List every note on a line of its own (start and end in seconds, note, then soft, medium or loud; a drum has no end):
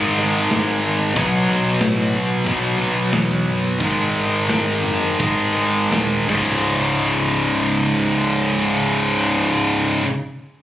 0.00 0.42 G#1 medium
0.00 0.16 G#2 medium
0.00 1.13 G#2 medium
0.00 0.17 D#3 medium
0.00 1.14 D#3 medium
0.00 0.17 G#3 medium
0.00 1.15 G#3 medium
0.18 0.49 G#2 medium
0.18 0.50 D#3 medium
0.18 0.49 G#3 medium
0.51 1.06 G#1 medium
0.51 1.13 G#2 medium
0.51 1.14 D#3 medium
0.51 1.14 G#3 medium
0.51 snare loud
0.51 open hi-hat medium
1.15 1.43 B1 medium
1.15 2.77 B2 medium
1.15 2.77 F#3 medium
1.15 2.77 B3 medium
1.15 kick loud
1.15 open hi-hat medium
1.49 1.76 B1 medium
1.80 2.08 A2 medium
1.80 snare loud
1.80 open hi-hat medium
2.14 2.41 B1 medium
2.45 2.74 B1 medium
2.45 3.77 B2 medium
2.45 3.78 F#3 medium
2.45 3.79 B3 medium
2.45 kick medium
2.45 open hi-hat soft
2.78 3.08 B1 medium
2.78 3.10 B2 medium
2.78 3.10 F#3 medium
2.78 3.10 B3 medium
3.12 3.42 E2 medium
3.12 3.77 B2 medium
3.12 3.78 F#3 medium
3.12 3.79 B3 medium
3.12 snare loud
3.12 open hi-hat soft
3.46 3.75 F#1 medium
3.79 4.09 G#1 loud
3.79 5.53 G#2 medium
3.79 5.53 D#3 medium
3.79 5.52 G#3 medium
3.79 kick loud
3.79 open hi-hat soft
4.14 4.44 G#1 medium
4.48 4.78 G#1 medium
4.48 snare loud
4.48 open hi-hat soft
4.83 5.14 F#1 medium
5.19 5.81 G#1 medium
5.19 6.26 G#2 medium
5.19 6.29 D#3 medium
5.19 6.30 G#3 medium
5.19 kick medium
5.19 open hi-hat soft
5.54 5.89 G#2 medium
5.54 5.89 D#3 medium
5.54 5.89 G#3 medium
5.91 6.23 D#1 medium
5.91 6.27 G#2 medium
5.91 6.29 D#3 medium
5.91 6.29 G#3 medium
5.91 snare medium
5.91 open hi-hat soft
6.27 10.00 C#1 medium
6.27 10.02 C#2 medium
6.27 10.04 G#2 medium
6.27 10.06 C#3 medium
6.27 kick medium
6.27 crash medium